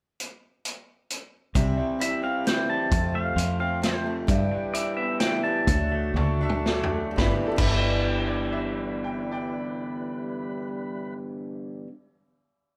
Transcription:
0.20 closed hi-hat medium
0.65 closed hi-hat medium
1.10 closed hi-hat medium
1.55 1.76 C2 loud
1.55 2.00 C3 medium
1.55 1.98 E3 medium
1.55 1.99 G3 medium
1.55 2.00 C4 medium
1.55 2.01 E4 loud
1.55 kick loud
1.55 closed hi-hat medium
1.77 2.68 G3 medium
1.99 2.23 E3 medium
1.99 2.23 G3 medium
1.99 2.22 C4 medium
1.99 2.21 E4 medium
1.99 2.22 E5 medium
1.99 closed hi-hat medium
2.22 2.44 G3 soft
2.22 2.45 C4 soft
2.22 2.45 E4 soft
2.22 2.47 F5 medium
2.44 2.68 E3 medium
2.44 2.69 G3 medium
2.44 2.67 C4 medium
2.44 2.66 E4 medium
2.44 2.69 G5 medium
2.44 snare medium
2.44 closed hi-hat medium
2.67 2.91 G3 soft
2.67 2.91 C4 medium
2.67 2.91 E4 medium
2.67 3.16 A5 loud
2.91 3.33 F2 loud
2.91 3.37 F2 medium
2.91 3.37 C3 medium
2.91 3.35 F3 medium
2.91 3.36 A3 medium
2.91 3.37 C4 medium
2.91 3.38 F4 medium
2.91 kick loud
2.91 closed hi-hat medium
3.14 4.04 A3 medium
3.14 3.59 F5 medium
3.36 4.23 F2 medium
3.36 3.59 F3 medium
3.36 3.60 A3 medium
3.36 3.59 C4 medium
3.36 3.58 F4 medium
3.36 closed hi-hat medium
3.59 3.81 F3 soft
3.59 3.82 A3 soft
3.59 3.83 C4 soft
3.59 3.82 F4 soft
3.59 3.83 F5 medium
3.82 4.05 F3 medium
3.82 4.05 A3 medium
3.82 4.05 C4 medium
3.82 4.04 F4 medium
3.82 4.15 C5 medium
3.82 snare medium
3.82 closed hi-hat medium
4.06 4.28 F3 soft
4.06 4.28 A3 soft
4.06 4.28 C4 soft
4.06 4.28 F4 medium
4.27 4.73 G2 medium
4.27 4.49 G2 loud
4.27 4.74 D3 medium
4.27 4.73 E3 medium
4.27 4.74 G3 medium
4.27 4.74 B3 medium
4.27 5.66 E4 medium
4.27 4.74 E4 medium
4.27 5.66 B4 medium
4.27 5.66 G5 medium
4.27 kick loud
4.27 closed hi-hat medium
4.52 5.43 G3 medium
4.74 5.19 E3 medium
4.74 5.20 G3 medium
4.74 5.21 B3 medium
4.74 5.21 E4 medium
4.74 4.96 D5 medium
4.74 closed hi-hat medium
4.97 5.67 B3 medium
4.97 5.18 E5 medium
5.20 5.44 E3 medium
5.20 5.44 G3 medium
5.20 5.44 B3 medium
5.20 5.42 E4 medium
5.20 5.42 G5 loud
5.20 snare medium
5.20 closed hi-hat medium
5.44 5.68 E3 soft
5.44 5.68 G3 soft
5.44 5.68 B3 medium
5.44 5.67 E4 medium
5.44 6.88 A5 loud
5.67 6.12 D2 medium
5.67 6.16 D3 medium
5.67 6.15 F#3 medium
5.67 6.15 A3 medium
5.67 7.17 D4 medium
5.67 6.15 D4 medium
5.67 6.16 F#4 medium
5.67 7.17 A4 medium
5.67 7.16 F#5 medium
5.67 kick loud
5.67 closed hi-hat medium
5.92 6.91 A3 medium
6.14 7.13 D2 medium
6.14 6.41 F#3 medium
6.14 6.41 A3 medium
6.14 6.40 D4 medium
6.14 6.39 F#4 medium
6.14 6.40 A5 medium
6.14 high tom medium
6.41 6.65 A3 soft
6.41 6.66 D4 medium
6.41 6.66 F#4 medium
6.41 6.66 E5 medium
6.50 mid tom medium
6.66 7.18 F#3 medium
6.66 7.18 A3 medium
6.66 7.19 D4 medium
6.66 7.19 F#4 medium
6.66 7.03 A4 medium
6.66 7.05 D5 medium
6.66 snare medium
6.83 floor tom medium
6.92 7.18 A3 medium
7.11 7.51 G2 medium
7.16 7.33 G1 medium
7.16 7.56 G2 medium
7.16 7.56 D3 medium
7.16 11.14 G3 medium
7.16 7.33 B5 medium
7.16 kick loud
7.16 snare medium
7.20 7.59 E3 medium
7.20 7.64 G3 medium
7.20 7.60 B3 loud
7.20 11.14 E4 medium
7.20 7.60 E4 loud
7.20 11.15 B4 medium
7.27 7.68 B3 medium
7.31 7.71 G4 medium
7.47 7.71 A4 loud
7.52 11.84 G2 medium
7.56 11.83 G1 medium
7.56 11.87 G2 medium
7.56 11.86 D3 medium
7.56 11.88 G3 loud
7.56 11.88 B3 loud
7.56 11.13 B5 medium
7.56 kick loud
7.56 crash medium
7.60 11.89 E3 medium
7.60 11.90 G3 medium
7.60 11.89 E4 loud
7.68 11.92 B3 medium
7.68 11.94 G4 medium
7.73 8.24 B4 medium
8.27 8.52 D5 medium
8.52 9.03 E5 medium
9.04 9.30 G5 medium
9.31 11.84 D5 medium
9.31 11.84 G5 medium

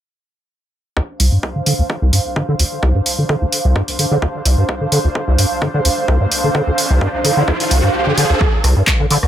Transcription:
0.97 1.01 D2 medium
0.97 9.28 D4 medium
0.97 kick loud
1.08 9.28 C5 medium
1.08 9.28 F5 medium
1.20 1.30 C2 loud
1.20 open hi-hat medium
1.32 1.38 G2 medium
1.43 kick medium
1.56 1.62 D3 medium
1.66 1.73 D3 loud
1.66 open hi-hat medium
1.79 1.82 D2 medium
1.90 kick loud
2.02 2.11 C2 medium
2.13 2.20 G2 medium
2.13 open hi-hat medium
2.36 2.43 D3 medium
2.36 kick loud
2.49 2.55 D3 loud
2.59 2.64 D2 medium
2.59 open hi-hat medium
2.83 2.93 C2 medium
2.83 kick loud
2.95 3.01 G2 medium
3.06 open hi-hat medium
3.18 3.24 D3 medium
3.29 3.36 D3 medium
3.29 kick loud
3.42 3.45 D2 medium
3.52 open hi-hat loud
3.65 3.74 C2 loud
3.76 3.83 G2 medium
3.76 kick loud
3.88 open hi-hat medium
3.99 4.06 D3 medium
3.99 open hi-hat loud
4.11 4.17 D3 loud
4.22 4.26 D2 medium
4.22 kick loud
4.45 4.56 C2 loud
4.45 open hi-hat loud
4.58 4.64 G2 medium
4.69 kick loud
4.69 riser medium
4.81 4.87 D3 medium
4.92 4.99 D3 medium
4.92 open hi-hat loud
5.04 5.08 D2 medium
5.15 kick loud
5.28 5.37 C2 loud
5.38 5.45 G2 medium
5.38 open hi-hat loud
5.62 5.69 D3 medium
5.62 kick loud
5.74 5.80 D3 loud
5.85 5.89 D2 medium
5.85 open hi-hat loud
6.08 6.18 C2 medium
6.08 kick loud
6.21 6.27 G2 medium
6.32 open hi-hat loud
6.44 6.50 D3 medium
6.55 6.62 D3 medium
6.55 kick loud
6.67 6.71 D2 medium
6.78 open hi-hat loud
6.90 6.99 C2 loud
7.01 7.08 G2 medium
7.01 kick loud
7.25 7.31 D3 medium
7.25 open hi-hat loud
7.37 7.43 D3 loud
7.48 7.52 D2 medium
7.48 kick loud
7.60 open hi-hat medium
7.71 7.81 C2 loud
7.71 open hi-hat loud
7.83 7.89 G2 medium
8.07 8.13 D3 medium
8.18 8.24 D3 loud
8.18 open hi-hat loud
8.30 8.34 D2 medium
8.41 8.45 D2 medium
8.41 kick loud
8.41 cross-stick medium
8.64 8.74 C2 loud
8.64 cross-stick soft
8.64 open hi-hat loud
8.76 8.82 G2 medium
8.87 kick loud
8.87 cross-stick medium
8.87 clap loud
9.00 9.06 D3 medium
9.11 9.17 D3 loud
9.11 open hi-hat loud
9.23 9.27 D2 medium
9.23 cross-stick soft

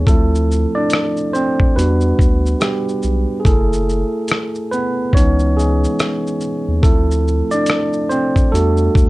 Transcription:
0.07 0.66 D2 loud
0.07 0.68 F3 medium
0.07 0.73 A3 medium
0.07 0.68 C4 soft
0.07 0.68 E4 medium
0.07 0.78 A4 medium
0.07 kick loud
0.07 closed hi-hat medium
0.07 shaker medium
0.35 shaker medium
0.52 shaker soft
0.75 1.31 D4 medium
0.75 1.35 D5 medium
0.90 cross-stick loud
0.90 closed hi-hat medium
0.90 shaker medium
1.17 shaker soft
1.33 1.74 C4 medium
1.33 1.77 C5 loud
1.33 shaker soft
1.60 kick medium
1.76 2.13 E2 loud
1.76 2.61 G3 medium
1.76 2.58 B3 medium
1.76 2.99 D4 soft
1.76 3.00 F#4 medium
1.76 2.63 B4 medium
1.76 closed hi-hat medium
1.76 shaker medium
2.01 shaker soft
2.19 2.55 D2 medium
2.19 kick medium
2.19 shaker soft
2.46 shaker soft
2.61 3.26 G3 medium
2.61 3.25 G4 medium
2.61 cross-stick loud
2.61 closed hi-hat medium
2.61 shaker medium
2.89 shaker soft
3.03 3.26 B1 loud
3.03 shaker soft
3.40 3.44 G#4 medium
3.45 4.04 F#1 loud
3.45 4.27 A3 medium
3.45 4.69 E4 medium
3.45 4.68 G#4 medium
3.45 4.26 A4 medium
3.45 kick loud
3.45 closed hi-hat medium
3.45 shaker medium
3.73 shaker medium
3.89 shaker soft
4.28 cross-stick loud
4.28 closed hi-hat medium
4.28 shaker medium
4.55 shaker soft
4.71 5.12 B3 medium
4.71 5.15 B4 medium
4.71 shaker soft
5.13 5.87 C#2 loud
5.13 5.75 E3 medium
5.13 5.75 B3 soft
5.13 5.55 C#4 medium
5.13 5.75 D#4 medium
5.13 5.58 C#5 medium
5.13 kick medium
5.13 closed hi-hat medium
5.13 shaker medium
5.39 shaker soft
5.57 6.38 G#3 medium
5.57 6.37 G#4 medium
5.57 shaker soft
5.84 shaker soft
5.99 cross-stick medium
5.99 closed hi-hat medium
5.99 shaker medium
6.27 shaker soft
6.41 shaker soft
6.68 6.82 D#2 medium
6.83 7.42 D2 medium
6.83 8.48 F3 medium
6.83 7.49 A3 medium
6.83 8.11 C4 soft
6.83 8.49 E4 medium
6.83 7.54 A4 medium
6.83 kick loud
6.83 closed hi-hat medium
6.83 shaker medium
7.11 shaker medium
7.28 shaker soft
7.51 8.07 D4 medium
7.51 8.11 D5 medium
7.51 shaker soft
7.66 cross-stick medium
7.66 closed hi-hat medium
7.66 shaker medium
7.93 shaker soft
8.09 8.50 C4 medium
8.09 8.53 C5 loud
8.09 shaker soft
8.36 kick medium
8.36 shaker soft
8.52 8.89 E2 loud
8.52 9.10 G3 medium
8.52 9.10 A3 medium
8.52 9.10 D4 medium
8.52 9.10 F#4 medium
8.52 9.10 A4 medium
8.52 closed hi-hat medium
8.52 shaker medium
8.77 shaker soft
8.95 9.10 D2 medium
8.95 kick medium
8.95 shaker soft

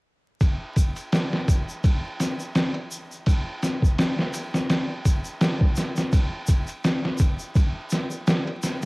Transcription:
0.41 kick medium
0.41 ride medium
0.41 shaker soft
0.76 kick medium
0.76 ride medium
0.76 shaker medium
0.96 ride soft
0.96 shaker soft
1.12 snare medium
1.12 ride medium
1.12 shaker soft
1.33 snare soft
1.48 kick medium
1.48 ride medium
1.48 shaker medium
1.69 shaker soft
1.84 kick loud
1.84 ride medium
1.84 shaker soft
2.20 snare soft
2.20 ride medium
2.20 shaker medium
2.40 shaker soft
2.55 snare loud
2.55 ride medium
2.55 shaker soft
2.74 ride soft
2.91 shaker medium
3.12 shaker soft
3.26 kick medium
3.26 ride medium
3.26 shaker soft
3.62 snare soft
3.62 ride medium
3.62 shaker medium
3.82 kick medium
3.82 shaker soft
3.98 snare loud
3.98 ride medium
3.98 shaker soft
4.19 snare soft
4.34 ride medium
4.34 shaker medium
4.54 snare medium
4.54 shaker soft
4.70 snare medium
4.70 ride medium
4.70 shaker soft
5.05 kick medium
5.05 ride medium
5.05 shaker medium
5.25 shaker soft
5.41 snare loud
5.41 ride medium
5.41 shaker soft
5.61 kick medium
5.76 snare soft
5.76 ride medium
5.76 shaker medium
5.96 snare soft
5.96 shaker medium
6.12 kick medium
6.12 ride medium
6.12 shaker soft
6.47 kick medium
6.47 ride medium
6.47 shaker medium
6.67 ride soft
6.67 shaker soft
6.84 snare medium
6.84 ride medium
6.84 shaker soft
7.05 snare soft
7.18 kick medium
7.18 ride medium
7.18 shaker medium
7.39 shaker soft
7.55 kick loud
7.55 ride medium
7.55 shaker soft
7.90 snare medium
7.90 ride medium
7.90 shaker medium
8.11 shaker soft
8.27 snare loud
8.27 ride medium
8.27 shaker soft
8.47 ride soft
8.63 snare soft
8.63 ride medium
8.63 shaker medium

